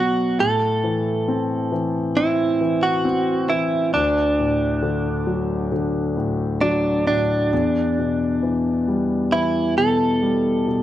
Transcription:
0, 0, Header, 1, 3, 480
1, 0, Start_track
1, 0, Key_signature, 1, "minor"
1, 0, Tempo, 883652
1, 216, Time_signature, 4, 2, 24, 8
1, 2137, Tempo, 896861
1, 5826, End_track
2, 0, Start_track
2, 0, Title_t, "Clean electric guitar"
2, 0, Program_c, 0, 27
2, 0, Note_on_c, 0, 66, 61
2, 216, Note_off_c, 0, 66, 0
2, 219, Note_on_c, 0, 69, 70
2, 1177, Note_on_c, 0, 64, 65
2, 1205, Note_off_c, 0, 69, 0
2, 1536, Note_on_c, 0, 66, 64
2, 1548, Note_off_c, 0, 64, 0
2, 1899, Note_on_c, 0, 64, 64
2, 1908, Note_off_c, 0, 66, 0
2, 2136, Note_off_c, 0, 64, 0
2, 2139, Note_on_c, 0, 62, 66
2, 3555, Note_off_c, 0, 62, 0
2, 3571, Note_on_c, 0, 62, 62
2, 3811, Note_off_c, 0, 62, 0
2, 3817, Note_on_c, 0, 62, 66
2, 5021, Note_on_c, 0, 64, 68
2, 5060, Note_off_c, 0, 62, 0
2, 5245, Note_off_c, 0, 64, 0
2, 5264, Note_on_c, 0, 69, 74
2, 5826, Note_off_c, 0, 69, 0
2, 5826, End_track
3, 0, Start_track
3, 0, Title_t, "Grand piano"
3, 0, Program_c, 1, 0
3, 0, Control_c, 1, 64, 127
3, 0, Note_on_c, 1, 47, 46
3, 0, Note_on_c, 1, 54, 43
3, 202, Note_off_c, 1, 47, 0
3, 207, Note_off_c, 1, 54, 0
3, 219, Note_on_c, 1, 45, 47
3, 222, Control_c, 1, 64, 0
3, 307, Control_c, 1, 64, 127
3, 454, Note_on_c, 1, 52, 37
3, 696, Note_on_c, 1, 60, 44
3, 926, Note_off_c, 1, 52, 0
3, 934, Note_on_c, 1, 52, 43
3, 1168, Note_off_c, 1, 60, 0
3, 1176, Note_on_c, 1, 60, 44
3, 1409, Note_off_c, 1, 52, 0
3, 1418, Note_on_c, 1, 52, 41
3, 1648, Note_off_c, 1, 60, 0
3, 1657, Note_on_c, 1, 60, 46
3, 1891, Note_off_c, 1, 52, 0
3, 1900, Note_on_c, 1, 52, 42
3, 2118, Note_off_c, 1, 45, 0
3, 2124, Note_off_c, 1, 60, 0
3, 2133, Note_off_c, 1, 52, 0
3, 2139, Note_on_c, 1, 38, 48
3, 2145, Control_c, 1, 64, 0
3, 2250, Control_c, 1, 64, 127
3, 2382, Note_on_c, 1, 45, 36
3, 2614, Note_on_c, 1, 50, 44
3, 2851, Note_on_c, 1, 54, 42
3, 3085, Note_off_c, 1, 50, 0
3, 3093, Note_on_c, 1, 50, 41
3, 3317, Note_off_c, 1, 45, 0
3, 3333, Note_on_c, 1, 45, 41
3, 3569, Note_off_c, 1, 54, 0
3, 3577, Note_on_c, 1, 54, 44
3, 3811, Note_off_c, 1, 45, 0
3, 3819, Note_on_c, 1, 45, 39
3, 4035, Note_off_c, 1, 50, 0
3, 4037, Note_off_c, 1, 38, 0
3, 4044, Note_off_c, 1, 54, 0
3, 4052, Note_off_c, 1, 45, 0
3, 4061, Note_on_c, 1, 40, 48
3, 4064, Control_c, 1, 64, 0
3, 4170, Control_c, 1, 64, 127
3, 4305, Note_on_c, 1, 47, 36
3, 4541, Note_on_c, 1, 52, 39
3, 4784, Note_on_c, 1, 55, 42
3, 5016, Note_off_c, 1, 52, 0
3, 5024, Note_on_c, 1, 52, 42
3, 5244, Note_off_c, 1, 47, 0
3, 5265, Note_on_c, 1, 47, 39
3, 5495, Note_off_c, 1, 55, 0
3, 5503, Note_on_c, 1, 55, 44
3, 5735, Note_off_c, 1, 47, 0
3, 5743, Note_on_c, 1, 47, 41
3, 5826, Note_off_c, 1, 40, 0
3, 5826, Note_off_c, 1, 47, 0
3, 5826, Note_off_c, 1, 52, 0
3, 5826, Note_off_c, 1, 55, 0
3, 5826, End_track
0, 0, End_of_file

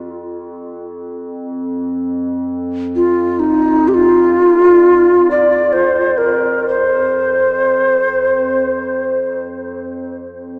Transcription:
0, 0, Header, 1, 3, 480
1, 0, Start_track
1, 0, Tempo, 500000
1, 10169, End_track
2, 0, Start_track
2, 0, Title_t, "Native American-style wooden flute"
2, 0, Program_c, 0, 77
2, 2839, Note_on_c, 0, 65, 76
2, 3259, Note_on_c, 0, 63, 81
2, 3273, Note_off_c, 0, 65, 0
2, 3726, Note_on_c, 0, 67, 61
2, 3741, Note_off_c, 0, 63, 0
2, 3782, Note_on_c, 0, 65, 102
2, 3797, Note_off_c, 0, 67, 0
2, 5089, Note_off_c, 0, 65, 0
2, 5097, Note_on_c, 0, 74, 76
2, 5497, Note_on_c, 0, 72, 66
2, 5512, Note_off_c, 0, 74, 0
2, 5931, Note_on_c, 0, 70, 61
2, 5946, Note_off_c, 0, 72, 0
2, 6404, Note_off_c, 0, 70, 0
2, 6412, Note_on_c, 0, 72, 71
2, 9028, Note_off_c, 0, 72, 0
2, 10169, End_track
3, 0, Start_track
3, 0, Title_t, "Ambient pad"
3, 0, Program_c, 1, 92
3, 0, Note_on_c, 1, 41, 63
3, 10169, Note_off_c, 1, 41, 0
3, 10169, End_track
0, 0, End_of_file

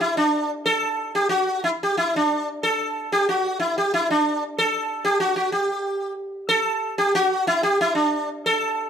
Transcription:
0, 0, Header, 1, 2, 480
1, 0, Start_track
1, 0, Tempo, 325733
1, 959, Time_signature, 6, 3, 24, 8
1, 7194, Tempo, 321888
1, 13180, End_track
2, 0, Start_track
2, 0, Title_t, "Sitar"
2, 0, Program_c, 0, 104
2, 8, Note_on_c, 0, 64, 87
2, 245, Note_off_c, 0, 64, 0
2, 251, Note_on_c, 0, 62, 83
2, 749, Note_off_c, 0, 62, 0
2, 966, Note_on_c, 0, 69, 94
2, 1635, Note_off_c, 0, 69, 0
2, 1693, Note_on_c, 0, 67, 90
2, 1899, Note_off_c, 0, 67, 0
2, 1905, Note_on_c, 0, 66, 84
2, 2360, Note_off_c, 0, 66, 0
2, 2414, Note_on_c, 0, 64, 86
2, 2488, Note_off_c, 0, 64, 0
2, 2698, Note_on_c, 0, 67, 81
2, 2896, Note_off_c, 0, 67, 0
2, 2910, Note_on_c, 0, 64, 84
2, 3144, Note_off_c, 0, 64, 0
2, 3185, Note_on_c, 0, 62, 83
2, 3659, Note_off_c, 0, 62, 0
2, 3879, Note_on_c, 0, 69, 98
2, 4602, Note_off_c, 0, 69, 0
2, 4603, Note_on_c, 0, 67, 94
2, 4829, Note_off_c, 0, 67, 0
2, 4845, Note_on_c, 0, 66, 80
2, 5271, Note_off_c, 0, 66, 0
2, 5299, Note_on_c, 0, 64, 81
2, 5513, Note_off_c, 0, 64, 0
2, 5566, Note_on_c, 0, 67, 76
2, 5789, Note_off_c, 0, 67, 0
2, 5802, Note_on_c, 0, 64, 85
2, 6026, Note_off_c, 0, 64, 0
2, 6049, Note_on_c, 0, 62, 78
2, 6526, Note_off_c, 0, 62, 0
2, 6756, Note_on_c, 0, 69, 96
2, 7438, Note_on_c, 0, 67, 91
2, 7475, Note_off_c, 0, 69, 0
2, 7662, Note_off_c, 0, 67, 0
2, 7668, Note_on_c, 0, 66, 86
2, 7889, Note_off_c, 0, 66, 0
2, 7907, Note_on_c, 0, 66, 72
2, 8143, Note_off_c, 0, 66, 0
2, 8149, Note_on_c, 0, 67, 74
2, 9056, Note_off_c, 0, 67, 0
2, 9587, Note_on_c, 0, 69, 107
2, 10263, Note_off_c, 0, 69, 0
2, 10325, Note_on_c, 0, 67, 94
2, 10569, Note_off_c, 0, 67, 0
2, 10575, Note_on_c, 0, 66, 104
2, 11050, Note_off_c, 0, 66, 0
2, 11056, Note_on_c, 0, 64, 98
2, 11290, Note_off_c, 0, 64, 0
2, 11296, Note_on_c, 0, 67, 96
2, 11534, Note_off_c, 0, 67, 0
2, 11557, Note_on_c, 0, 64, 101
2, 11761, Note_off_c, 0, 64, 0
2, 11767, Note_on_c, 0, 62, 86
2, 12263, Note_off_c, 0, 62, 0
2, 12528, Note_on_c, 0, 69, 108
2, 13170, Note_off_c, 0, 69, 0
2, 13180, End_track
0, 0, End_of_file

